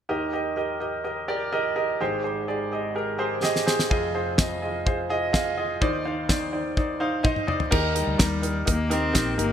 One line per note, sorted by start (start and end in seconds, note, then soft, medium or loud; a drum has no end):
0.09 1.96 D#2 soft
0.09 1.96 D#3 soft
0.09 0.30 G4 medium
0.09 0.30 A#4 medium
0.09 0.31 D#5 medium
0.33 0.54 G4 medium
0.33 0.55 A#4 medium
0.33 0.55 D#5 medium
0.56 0.78 G4 medium
0.56 0.78 A#4 medium
0.56 0.78 D#5 medium
0.80 1.02 G4 medium
0.80 1.02 A#4 soft
0.80 1.02 D#5 medium
1.04 1.26 G4 medium
1.04 1.26 A#4 medium
1.04 1.26 D#5 medium
1.28 1.50 G4 medium
1.28 1.50 A#4 medium
1.28 1.50 D5 medium
1.53 1.74 G4 medium
1.53 1.74 A#4 medium
1.53 1.74 D#5 medium
1.76 1.97 G4 medium
1.76 1.97 A#4 medium
1.76 1.97 D#5 medium
2.00 3.87 G#1 medium
2.00 3.87 G#2 medium
2.00 2.22 G4 medium
2.00 2.22 G#4 medium
2.00 2.22 C5 medium
2.23 2.45 G4 medium
2.23 2.45 G#4 medium
2.23 2.45 C5 medium
2.48 2.69 G4 medium
2.48 2.69 G#4 medium
2.48 2.69 D5 medium
2.72 2.93 G4 medium
2.72 2.93 G#4 soft
2.72 2.93 D#5 medium
2.95 3.17 G4 medium
2.95 3.17 G#4 medium
2.95 3.17 A#4 medium
3.18 3.40 G4 medium
3.18 3.40 G#4 medium
3.18 3.41 C5 medium
3.42 3.64 G4 medium
3.42 3.64 G#4 medium
3.42 3.64 D#5 medium
3.42 snare soft
3.56 snare soft
3.66 3.88 G4 medium
3.66 3.88 G#4 medium
3.66 3.88 C5 medium
3.66 snare medium
3.79 snare medium
3.90 5.78 F1 medium
3.90 5.77 F2 medium
3.90 4.12 F4 medium
3.90 4.12 G#4 medium
3.90 4.12 D#5 medium
3.90 kick medium
4.14 4.36 F4 medium
4.14 4.36 G#4 medium
4.14 4.36 C5 medium
4.38 4.60 F4 medium
4.38 4.60 G#4 medium
4.38 4.60 D#5 medium
4.38 kick medium
4.38 snare medium
4.62 4.84 F4 medium
4.62 4.83 G#4 medium
4.62 4.84 D#5 medium
4.86 5.07 F4 medium
4.86 5.07 G#4 medium
4.86 5.07 C5 medium
4.86 kick medium
5.09 5.31 F4 medium
5.09 5.31 G#4 medium
5.09 5.32 D#5 medium
5.33 5.55 F4 medium
5.33 5.55 G#4 medium
5.33 5.55 D#5 medium
5.33 kick medium
5.33 snare medium
5.57 5.79 F4 medium
5.57 5.79 G#4 medium
5.57 5.79 D#5 medium
5.81 7.68 D#2 medium
5.81 7.68 D#3 medium
5.81 6.03 D#4 medium
5.81 6.03 C5 medium
5.81 6.03 D5 medium
5.81 kick medium
6.05 6.27 D#4 medium
6.05 6.27 C5 medium
6.05 6.27 F5 medium
6.29 6.50 D#4 medium
6.29 6.50 C5 medium
6.29 6.51 D5 medium
6.29 kick medium
6.29 snare medium
6.52 6.74 D#4 medium
6.52 6.74 C5 medium
6.52 6.74 D5 medium
6.77 6.98 D#4 medium
6.77 6.98 C5 medium
6.77 6.99 D5 medium
6.77 kick medium
7.00 7.22 D#4 medium
7.00 7.22 C5 medium
7.00 7.22 F5 medium
7.23 7.45 D#4 medium
7.23 7.46 C5 medium
7.23 7.46 D#5 loud
7.23 kick medium
7.23 high tom soft
7.36 mid tom soft
7.47 7.69 D#4 medium
7.47 7.69 C5 medium
7.47 7.69 D5 medium
7.47 mid tom medium
7.60 floor tom medium
7.71 8.05 D#2 medium
7.71 8.39 D#3 medium
7.71 7.93 D#4 medium
7.71 7.93 G4 medium
7.71 7.93 A#4 loud
7.71 kick loud
7.71 crash medium
7.95 8.17 D#4 medium
7.95 8.17 G4 medium
7.95 8.17 A#4 medium
7.95 closed hi-hat medium
7.99 8.65 G3 medium
8.07 8.19 D2 medium
8.18 8.64 D#2 medium
8.18 8.40 D#4 medium
8.18 8.40 G4 medium
8.18 8.41 A#4 medium
8.18 kick loud
8.18 snare loud
8.18 closed hi-hat medium
8.42 8.64 D#4 medium
8.42 8.64 G4 medium
8.42 8.65 A#4 medium
8.42 closed hi-hat medium
8.65 9.12 D#2 medium
8.65 8.88 D#4 medium
8.65 8.88 G4 medium
8.65 8.88 A#4 medium
8.65 kick medium
8.65 closed hi-hat medium
8.70 8.94 A#3 medium
8.90 9.40 C4 medium
8.90 9.12 D#4 medium
8.90 9.12 G4 medium
8.90 9.12 A#4 medium
8.90 closed hi-hat medium
9.13 9.37 A#1 medium
9.13 9.36 D#4 medium
9.13 9.36 G4 medium
9.13 9.36 A#4 medium
9.13 kick loud
9.13 snare loud
9.13 closed hi-hat medium
9.37 9.53 G1 medium
9.37 9.53 A#3 medium
9.37 9.53 D#4 medium
9.37 9.53 G4 medium
9.37 9.53 A#4 medium
9.37 closed hi-hat medium